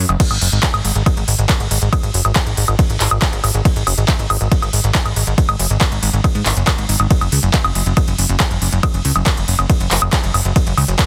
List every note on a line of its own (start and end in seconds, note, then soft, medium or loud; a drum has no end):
0.09 0.16 F#1 medium
0.09 closed hi-hat soft
0.09 high woodblock soft
0.20 kick loud
0.20 closed hi-hat loud
0.20 crash medium
0.20 ride medium
0.31 0.38 G#1 medium
0.31 closed hi-hat soft
0.31 high woodblock soft
0.41 0.49 F#1 loud
0.41 open hi-hat loud
0.52 0.59 G#1 medium
0.52 closed hi-hat soft
0.63 kick loud
0.63 clap loud
0.63 closed hi-hat loud
0.63 ride medium
0.74 0.81 G#1 medium
0.74 closed hi-hat soft
0.74 high woodblock medium
0.85 0.92 G#1 loud
0.85 open hi-hat loud
0.95 1.02 G#1 medium
0.95 closed hi-hat soft
1.06 kick loud
1.06 closed hi-hat loud
1.06 ride medium
1.06 high woodblock soft
1.17 1.24 G#1 medium
1.17 closed hi-hat soft
1.28 1.35 G#1 loud
1.28 open hi-hat loud
1.39 1.46 G#1 loud
1.39 closed hi-hat soft
1.49 kick loud
1.49 clap loud
1.49 closed hi-hat loud
1.49 ride medium
1.49 high woodblock soft
1.60 1.67 G#1 medium
1.60 closed hi-hat soft
1.71 1.78 G#1 loud
1.71 open hi-hat loud
1.82 1.89 G#1 medium
1.82 closed hi-hat soft
1.93 kick loud
1.93 closed hi-hat loud
1.93 ride medium
1.93 high woodblock medium
2.03 2.10 G#1 medium
2.03 closed hi-hat soft
2.14 2.21 F#1 loud
2.14 open hi-hat loud
2.25 2.32 G#1 medium
2.25 closed hi-hat soft
2.25 high woodblock soft
2.36 kick loud
2.36 clap loud
2.36 closed hi-hat medium
2.36 ride medium
2.47 2.54 G#1 medium
2.47 closed hi-hat soft
2.57 2.64 G#1 loud
2.57 open hi-hat loud
2.68 2.75 G#1 medium
2.68 closed hi-hat soft
2.68 high woodblock soft
2.79 kick loud
2.79 closed hi-hat loud
2.79 ride medium
2.90 2.97 G#1 medium
2.90 closed hi-hat soft
3.00 3.07 G#1 loud
3.00 clap medium
3.00 open hi-hat loud
3.11 3.18 G#1 medium
3.11 closed hi-hat soft
3.11 high woodblock medium
3.22 kick loud
3.22 clap loud
3.22 closed hi-hat loud
3.22 ride medium
3.33 3.40 G#1 medium
3.33 closed hi-hat soft
3.44 3.51 G#1 loud
3.44 open hi-hat loud
3.44 high woodblock soft
3.54 3.61 G#1 medium
3.54 closed hi-hat soft
3.65 kick loud
3.65 closed hi-hat loud
3.65 ride medium
3.76 3.83 G#1 medium
3.76 closed hi-hat soft
3.87 3.94 F#1 loud
3.87 open hi-hat loud
3.87 high woodblock soft
3.98 4.05 G#1 medium
3.98 closed hi-hat soft
4.08 kick loud
4.08 clap loud
4.08 closed hi-hat medium
4.08 ride medium
4.19 4.26 G#1 medium
4.19 closed hi-hat soft
4.30 4.37 G#1 loud
4.30 open hi-hat loud
4.30 high woodblock medium
4.41 4.48 G#1 medium
4.41 closed hi-hat soft
4.52 kick loud
4.52 closed hi-hat medium
4.52 ride medium
4.62 4.69 G#1 medium
4.62 closed hi-hat soft
4.62 high woodblock soft
4.73 4.80 G#1 loud
4.73 open hi-hat loud
4.84 4.91 G#1 medium
4.84 closed hi-hat soft
4.95 kick loud
4.95 clap loud
4.95 closed hi-hat loud
4.95 ride medium
5.06 5.13 G#1 medium
5.06 closed hi-hat soft
5.06 high woodblock soft
5.16 5.23 G#1 loud
5.16 open hi-hat loud
5.27 5.34 G#1 medium
5.27 closed hi-hat soft
5.38 kick loud
5.38 closed hi-hat medium
5.38 ride medium
5.49 5.56 G#1 medium
5.49 closed hi-hat soft
5.49 high woodblock medium
5.59 5.66 F#1 loud
5.59 open hi-hat loud
5.70 5.77 G#1 medium
5.70 closed hi-hat soft
5.81 kick loud
5.81 clap loud
5.81 closed hi-hat medium
5.81 ride medium
5.81 high woodblock soft
5.92 5.99 G#1 medium
5.92 closed hi-hat soft
6.03 6.10 G#1 loud
6.03 open hi-hat loud
6.13 6.20 G#1 medium
6.13 closed hi-hat soft
6.24 kick loud
6.24 closed hi-hat medium
6.24 ride medium
6.24 high woodblock soft
6.35 6.42 G#2 medium
6.35 closed hi-hat soft
6.46 6.53 G#1 loud
6.46 clap medium
6.46 open hi-hat loud
6.57 6.64 F#1 medium
6.57 closed hi-hat soft
6.67 kick loud
6.67 clap loud
6.67 closed hi-hat medium
6.67 ride medium
6.67 high woodblock medium
6.78 6.85 G#1 medium
6.78 closed hi-hat soft
6.89 6.96 G#1 loud
6.89 open hi-hat loud
7.00 7.07 G#1 medium
7.00 closed hi-hat soft
7.00 high woodblock soft
7.11 kick loud
7.11 closed hi-hat medium
7.11 ride medium
7.21 7.28 F#1 medium
7.21 closed hi-hat soft
7.21 high woodblock soft
7.32 7.39 C#2 loud
7.32 open hi-hat loud
7.43 7.50 F#1 medium
7.43 closed hi-hat soft
7.54 kick loud
7.54 clap loud
7.54 closed hi-hat medium
7.54 ride medium
7.64 7.72 F#1 medium
7.64 closed hi-hat soft
7.64 high woodblock medium
7.75 7.82 F#1 loud
7.75 open hi-hat loud
7.86 7.93 F#1 medium
7.86 closed hi-hat soft
7.97 kick loud
7.97 closed hi-hat medium
7.97 ride medium
7.97 high woodblock soft
8.08 8.15 F#1 medium
8.08 closed hi-hat soft
8.18 8.26 F#1 loud
8.18 open hi-hat loud
8.29 8.36 F#1 medium
8.29 closed hi-hat soft
8.40 kick loud
8.40 clap loud
8.40 closed hi-hat medium
8.40 ride medium
8.40 high woodblock soft
8.51 8.58 F#1 medium
8.51 closed hi-hat soft
8.62 8.69 F#1 loud
8.62 open hi-hat loud
8.72 8.79 F#1 medium
8.72 closed hi-hat soft
8.83 kick loud
8.83 closed hi-hat medium
8.83 ride medium
8.83 high woodblock medium
8.94 9.01 F#1 medium
8.94 closed hi-hat soft
9.05 9.12 C#2 loud
9.05 open hi-hat loud
9.16 9.23 F#1 medium
9.16 closed hi-hat soft
9.16 high woodblock soft
9.26 kick loud
9.26 clap loud
9.26 closed hi-hat medium
9.26 ride medium
9.37 9.44 F#1 medium
9.37 closed hi-hat soft
9.48 9.55 F#1 loud
9.48 open hi-hat loud
9.59 9.66 F#1 medium
9.59 closed hi-hat soft
9.59 high woodblock soft
9.70 kick loud
9.70 closed hi-hat medium
9.70 ride medium
9.80 9.87 F#1 medium
9.80 closed hi-hat soft
9.91 9.98 F#1 loud
9.91 clap medium
9.91 open hi-hat loud
10.02 10.09 F#1 medium
10.02 closed hi-hat soft
10.02 high woodblock medium
10.13 kick loud
10.13 clap loud
10.13 closed hi-hat loud
10.13 ride medium
10.24 10.31 F#1 medium
10.24 closed hi-hat soft
10.34 10.41 F#1 loud
10.34 open hi-hat loud
10.34 high woodblock soft
10.45 10.52 F#1 medium
10.45 closed hi-hat soft
10.56 kick loud
10.56 closed hi-hat medium
10.56 ride medium
10.67 10.74 F#1 medium
10.67 closed hi-hat soft
10.77 10.84 C#2 loud
10.77 open hi-hat loud
10.77 high woodblock soft
10.88 10.95 F#1 medium
10.88 closed hi-hat soft
10.99 kick loud
10.99 clap loud
10.99 closed hi-hat loud
10.99 ride medium